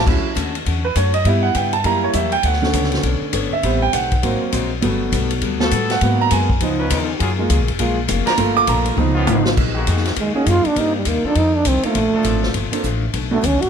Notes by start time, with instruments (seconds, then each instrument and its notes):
0.06 upright bass D2, steel-string acoustic guitar D3 A3 C#4 F#4, grand piano F#3 C#4 E4, kick, crash
0.24 muted upright bass stroke
0.35 upright bass D#2, steel-string acoustic guitar D3 A3 C#4 F#4, kick, hi-hat pedal, ride
0.55 ride
0.65 upright bass E2, steel-string acoustic guitar D3 A3 C#4 F#4, kick, ride
0.85 grand piano B4
0.96 upright bass F#2, steel-string acoustic guitar D3 A3 C#4 F#4, grand piano C#5, kick, hi-hat pedal, ride
1.14 grand piano D#5, ride
1.25 upright bass G2, steel-string acoustic guitar C#3 B3 E4, grand piano G3 B3 E4 E5, kick, ride
1.29 steel-string acoustic guitar G4
1.43 grand piano F#5
1.55 upright bass G2, steel-string acoustic guitar C#3 B3 E4 G4, grand piano G5, kick, hi-hat pedal, ride
1.73 grand piano A5, ride
1.83 upright bass F#2, steel-string acoustic guitar F#3 A#3 E4 G4, grand piano G3 A#3 E4 A#5, kick, ride
2.04 grand piano C#5
2.13 upright bass E2, steel-string acoustic guitar F#3 A#3 E4 G4, grand piano E5, kick, hi-hat pedal, ride
2.32 grand piano G5, ride
2.43 upright bass D2, steel-string acoustic guitar B3 D4, grand piano F#5, kick, ride
2.48 steel-string acoustic guitar A4 C#5
2.53 snare
2.62 grand piano D3 A3 C#4, snare
2.73 upright bass C#2, steel-string acoustic guitar B3 D4 A4 C#5, kick, hi-hat pedal, ride
2.84 snare
2.92 snare, ride
3.03 upright bass B1, steel-string acoustic guitar B3 D4 A4 C#5, kick, ride
3.21 muted upright bass stroke
3.33 upright bass G1, steel-string acoustic guitar B3 D4 A4 C#5, kick, hi-hat pedal, ride
3.53 grand piano E5, muted upright bass stroke
3.62 upright bass A1, grand piano G3 B3 C4, steel-string acoustic guitar A3 C4 G4 B4, kick, ride
3.82 grand piano G5
3.93 upright bass B1, steel-string acoustic guitar A3 C4 G4 B4, grand piano F#5, kick, hi-hat pedal, ride
4.12 kick, ride
4.22 upright bass G#1, grand piano F#3 A#3 C4, steel-string acoustic guitar G#3 C4 F#4 A#4, kick, ride
4.52 upright bass A#1, steel-string acoustic guitar G#3 C4 F#4 A#4, kick, hi-hat pedal, ride
4.81 upright bass G1, grand piano F#3 A3 B3, steel-string acoustic guitar G3 B3 F#4 A4, kick, ride
5.12 upright bass B1, steel-string acoustic guitar G3 B3 F#4 A4, kick, hi-hat pedal, ride
5.30 ride
5.41 upright bass D2, steel-string acoustic guitar G3 B3 F#4 A4, kick, ride
5.60 grand piano F#3 A3 B3, trombone section B3 F#4 A4, snare
5.71 upright bass A2, steel-string acoustic guitar G3 B3 F#4 A4, kick, hi-hat pedal, ride
5.90 grand piano F#5, snare, ride
6.01 upright bass G#2, grand piano F#3 A#3 B3, steel-string acoustic guitar G#3 B3 F#4 A#4, kick, ride
6.21 grand piano A#5
6.31 upright bass F#2, steel-string acoustic guitar G#3 B3 F#4 A#4, grand piano G#5, kick, hi-hat pedal, ride
6.50 kick
6.60 upright bass C#2, steel-string acoustic guitar C#3 F3 B3 D#4, grand piano F3 B3 D#4, kick, ride
6.78 trombone section F3 C#4 D#4 B4
6.90 upright bass D#2, steel-string acoustic guitar C#3 F3 B3 D#4, kick, hi-hat pedal, ride
7.18 upright bass F#2, trombone section F#3 A#3 F4 G#4, steel-string acoustic guitar F#3, kick, ride
7.22 steel-string acoustic guitar A#3 F4 G#4
7.39 grand piano G#3 A#3 F4
7.50 upright bass C#2, steel-string acoustic guitar F#3 A#3 F4 G#4, kick, hi-hat pedal, ride
7.60 upright bass A#1
7.68 upright bass F#1, ride
7.79 upright bass A#1, steel-string acoustic guitar F#3 A#3 F4 G#4, grand piano G#3 A#3 F4, kick, ride
8.08 upright bass F1, steel-string acoustic guitar F#3 A#3 F4 G#4, kick, hi-hat pedal, ride
8.25 trombone section F3 A#3 D4 A#4, grand piano A#5, muted upright bass stroke, snare, ride
8.37 upright bass G1, steel-string acoustic guitar G2 F3 A#3 D4, grand piano A3 A#3 F4, kick, ride
8.57 grand piano D6
8.67 upright bass A#1, steel-string acoustic guitar G2 F3 A#3 D4, grand piano A#5, kick, hi-hat pedal, ride
8.86 ride
8.97 upright bass C#2, steel-string acoustic guitar C#3 B3 D#4 F4, grand piano F3 B3 D#4, mid tom
9.15 trombone section D#3 B3 C#4 F4
9.27 upright bass G#1, steel-string acoustic guitar C#3 B3 D#4 F4, hi-hat pedal, mid tom
9.45 snare
9.57 upright bass A#1, steel-string acoustic guitar F#3 A#3 D#4 G#4, kick, crash
9.73 trombone section D#3 G#3 A#3 F#4
9.87 upright bass F2, steel-string acoustic guitar F#3 A#3 D#4 G#4, kick, hi-hat pedal, ride
9.97 snare
10.05 snare, ride
10.16 upright bass D#2, steel-string acoustic guitar F#3 A#3 D#4 G#4, trombone G#3, kick, ride
10.34 grand piano A#3 C#4 D#4 F#4 G#4, trombone C#4, muted upright bass stroke
10.46 upright bass F#2, steel-string acoustic guitar F#3 A#3 D#4 G#4, trombone F4, kick, hi-hat pedal, ride
10.65 trombone D4, muted upright bass stroke, ride
10.76 upright bass G2, steel-string acoustic guitar C3 G3 A#3 D#4, grand piano A#3 C4 D4 D#4 G4, trombone D#4, kick, ride
10.96 trombone G3
11.05 upright bass D#2, steel-string acoustic guitar C3 G3 A#3 D#4, trombone A#3, kick, hi-hat pedal, ride
11.24 trombone section F3 C4 D#4 A4, trombone D4, muted upright bass stroke
11.35 upright bass F2, steel-string acoustic guitar F2 D#3 A3 C4, trombone D#4, kick, ride
11.55 trombone D4
11.65 upright bass C2, steel-string acoustic guitar F2 D#3 A3 C4, trombone C4, kick, hi-hat pedal, ride
11.83 trombone A3, grand piano A#3 C4 D4 F4 A4, muted upright bass stroke, ride
11.93 upright bass A#1, steel-string acoustic guitar A#2 F3 A3 D4, kick, ride
12.14 trombone section A#2 F3 D4 A4, muted upright bass stroke
12.23 upright bass G#1, steel-string acoustic guitar A#2 F3 A3 D4, kick, hi-hat pedal, ride
12.43 snare
12.54 upright bass G1, steel-string acoustic guitar A#2 F3 A3 D4, kick, ride
12.72 grand piano A#3 C4 D4 F4 A4, muted upright bass stroke, ride
12.83 upright bass A1, steel-string acoustic guitar A#2 F3 A3 D4, kick, hi-hat pedal
13.13 upright bass B1, steel-string acoustic guitar B2 F#3 A3 D4, kick, ride
13.31 grand piano A3 B3 C#4 D4 F#4, trombone A3
13.42 upright bass D2, steel-string acoustic guitar B2 F#3 A3 D4, kick, hi-hat pedal, ride
13.46 trombone C#4
13.52 upright bass B1
13.61 upright bass A1, trombone F#4, ride